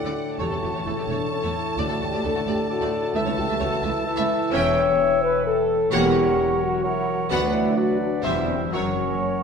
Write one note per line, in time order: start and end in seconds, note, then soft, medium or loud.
0.00 0.36 A2 medium
0.00 0.42 D3 soft
0.00 0.23 A3 soft
0.00 0.42 D4 soft
0.00 0.16 E4 medium
0.00 0.35 A4 medium
0.00 0.85 A4 soft
0.00 0.35 D5 medium
0.00 0.41 D5 soft
0.00 0.35 F#5 soft
0.00 0.42 F#5 soft
0.00 0.41 G5 medium
0.04 0.09 D3 medium
0.04 0.09 A3 medium
0.04 0.10 D5 medium
0.09 0.42 F#4 soft
0.16 0.39 D4 medium
0.24 0.54 A3 soft
0.39 0.44 E1 medium
0.39 0.44 E2 medium
0.39 0.85 A2 medium
0.39 1.80 E3 medium
0.39 0.44 A3 medium
0.39 0.63 G4 medium
0.39 0.85 A4 medium
0.39 0.85 C#5 soft
0.39 0.44 C#5 medium
0.39 3.15 A5 medium
0.39 0.85 A5 soft
0.50 0.56 E2 soft
0.50 0.56 A3 soft
0.50 0.55 A4 soft
0.56 1.62 A3 soft
0.61 0.67 E1 soft
0.61 0.67 E2 soft
0.61 0.68 A3 soft
0.61 0.72 F#4 medium
0.61 0.67 G4 soft
0.71 0.79 E2 medium
0.71 0.79 A3 medium
0.71 1.01 C#4 soft
0.71 0.79 C#5 medium
0.85 0.90 E1 soft
0.85 0.91 E2 soft
0.85 1.31 A2 soft
0.85 0.91 A3 soft
0.85 0.96 E4 medium
0.85 1.31 A4 medium
0.85 0.91 A4 soft
0.85 1.31 A4 soft
0.85 1.30 C#5 soft
0.85 1.31 A5 soft
0.98 1.03 E2 soft
0.98 1.03 A3 soft
0.98 1.47 C#4 soft
0.98 1.02 G4 soft
1.08 1.13 E1 medium
1.08 1.14 E2 medium
1.08 1.14 A3 medium
1.08 1.31 D4 medium
1.08 1.13 C#5 medium
1.17 1.81 C#5 soft
1.31 1.78 A2 medium
1.31 1.42 C#4 medium
1.31 1.78 A4 medium
1.31 2.23 A4 soft
1.31 1.77 C#5 medium
1.31 1.78 A5 medium
1.43 1.49 E2 medium
1.43 1.48 A3 medium
1.43 1.48 C#5 medium
1.48 1.80 C#4 soft
1.54 1.77 E4 medium
1.63 1.92 A3 soft
1.78 1.82 D2 medium
1.78 1.83 D2 medium
1.78 2.24 A2 medium
1.78 3.17 D3 medium
1.78 1.83 A3 medium
1.78 2.01 F#4 medium
1.78 2.24 A4 medium
1.78 1.83 D5 medium
1.78 2.23 D5 medium
1.78 2.24 A5 soft
1.89 1.95 D2 soft
1.89 1.95 A3 soft
1.89 1.94 A4 soft
2.01 2.06 D2 soft
2.01 2.06 A3 soft
2.01 2.05 F#4 soft
2.01 2.24 G4 medium
2.09 2.39 D4 soft
2.09 2.17 D5 medium
2.13 2.18 D2 medium
2.13 2.17 A3 medium
2.23 2.29 D2 soft
2.23 2.69 A2 medium
2.23 2.29 A3 soft
2.23 2.28 A4 soft
2.23 2.69 A4 soft
2.23 2.69 A4 medium
2.23 2.35 A4 medium
2.23 2.69 D5 medium
2.23 2.69 A5 medium
2.35 2.40 D2 medium
2.35 2.40 A3 soft
2.35 2.40 F#4 medium
2.40 2.84 D4 soft
2.46 2.52 D2 medium
2.46 2.52 A3 medium
2.46 2.58 G4 medium
2.46 2.51 D5 medium
2.55 3.17 D5 soft
2.70 3.15 A2 medium
2.70 2.93 F#4 medium
2.70 3.14 A4 medium
2.70 3.75 A4 medium
2.70 3.17 D5 medium
2.70 3.15 A5 medium
2.81 2.86 D2 medium
2.81 2.86 A3 medium
2.81 2.86 D5 medium
2.85 3.17 D4 soft
2.93 3.04 E4 medium
3.01 3.45 A3 soft
3.05 3.16 F#4 medium
3.15 3.19 C#2 medium
3.15 3.20 C#2 medium
3.15 4.56 C#3 medium
3.15 4.04 E3 medium
3.15 3.20 A3 medium
3.15 3.39 E4 medium
3.15 4.05 A4 medium
3.15 3.20 E5 medium
3.15 4.04 E5 medium
3.15 4.04 A5 medium
3.15 4.51 A5 medium
3.26 3.31 C#2 medium
3.26 3.31 A3 soft
3.26 3.31 C#5 medium
3.31 7.21 C#4 soft
3.37 3.42 C#2 soft
3.37 3.43 C#2 medium
3.37 3.42 A3 medium
3.37 3.61 G4 medium
3.37 3.42 A4 soft
3.46 3.54 C#2 medium
3.46 4.37 A3 soft
3.46 3.53 A3 medium
3.46 3.53 E5 medium
3.60 3.65 C#2 medium
3.60 3.65 A3 soft
3.60 3.90 E4 soft
3.60 3.84 F#4 medium
3.60 3.64 C#5 medium
3.71 3.77 C#2 medium
3.71 3.76 A3 soft
3.71 3.76 A4 medium
3.76 4.06 A4 medium
3.83 3.87 C#2 medium
3.83 3.88 C#2 medium
3.83 3.88 A3 medium
3.83 4.06 E4 medium
3.83 3.87 E5 medium
3.91 4.21 E4 medium
4.05 4.53 E3 medium
4.05 4.53 E4 loud
4.05 4.56 A4 medium
4.05 4.52 E5 medium
4.05 4.55 A5 medium
4.17 4.23 C#2 medium
4.17 4.23 A3 medium
4.17 4.22 E5 medium
4.22 4.84 E4 medium
4.38 4.56 A3 medium
4.52 4.92 E1 medium
4.52 4.93 E2 medium
4.52 5.61 E3 medium
4.52 5.91 E3 medium
4.52 4.75 C#4 medium
4.52 5.23 C#5 loud
4.52 5.64 C#5 medium
4.52 4.75 E5 medium
4.52 5.61 E5 medium
4.52 5.63 G5 medium
4.52 4.76 G5 medium
4.70 5.93 G3 medium
4.85 5.76 E4 medium
5.01 5.60 C#5 medium
5.16 5.45 G4 medium
5.22 5.45 B4 loud
5.31 7.32 E5 medium
5.46 5.94 G4 medium
5.46 5.91 A4 loud
5.61 7.32 C#5 medium
5.77 6.06 E4 medium
5.91 6.29 E1 medium
5.91 6.29 E2 medium
5.91 7.32 E3 medium
5.91 6.80 F#3 medium
5.91 6.13 A#3 medium
5.91 6.59 G4 loud
5.91 6.80 A#4 medium
5.91 6.79 C#5 medium
5.91 6.12 C#5 medium
5.91 6.80 F#5 medium
5.91 6.13 F#5 medium
6.07 7.32 E4 medium
6.22 7.13 F#3 medium
6.38 6.67 F#4 medium
6.53 6.83 A#4 medium
6.61 6.84 F#4 loud
6.68 6.98 F#4 medium
6.83 7.29 F#3 medium
6.83 7.07 E4 loud
6.83 7.32 A#4 medium
6.83 7.28 C#5 medium
6.83 7.29 F#5 medium
6.99 7.75 F#4 medium
7.15 7.60 F#3 medium
7.29 7.68 D2 medium
7.29 7.69 D2 medium
7.29 8.26 D3 medium
7.29 7.76 F#3 medium
7.29 7.52 B3 medium
7.29 7.41 F#4 loud
7.29 7.76 B4 medium
7.29 7.52 B4 medium
7.29 7.75 D5 medium
7.29 7.76 F#5 medium
7.29 7.52 F#5 medium
7.46 8.26 D4 medium
7.53 7.76 E4 loud
7.61 8.26 F#3 medium
7.76 8.25 F#3 medium
7.76 8.00 F#4 loud
7.76 8.07 F#4 medium
7.76 8.26 B4 medium
7.76 8.26 D5 medium
7.76 8.25 F#5 medium
7.92 8.26 B4 medium
8.00 8.11 D4 medium
8.08 8.26 F#4 medium
8.13 8.24 C#4 medium
8.23 8.64 E1 medium
8.23 8.64 E2 medium
8.23 8.75 E3 medium
8.23 8.72 G3 medium
8.23 8.46 G3 medium
8.23 8.47 B3 medium
8.23 8.46 C5 medium
8.23 8.72 C5 medium
8.23 8.46 E5 medium
8.23 8.74 E5 medium
8.41 8.56 E4 soft
8.47 8.59 C4 medium
8.57 8.75 E4 soft
8.57 8.75 C5 soft
8.72 9.13 F#1 medium
8.72 9.13 F#2 medium
8.72 9.43 F#2 medium
8.72 8.95 F#3 medium
8.72 9.43 F#3 medium
8.72 9.43 C#4 medium
8.72 8.96 A#4 soft
8.72 9.43 A#4 medium
8.72 8.96 C#5 medium
8.72 9.43 C#5 medium
8.72 9.43 F#5 medium
8.90 9.43 C#3 soft
9.06 9.43 F#3 soft
9.22 9.43 C#4 soft
9.38 9.43 A#4 soft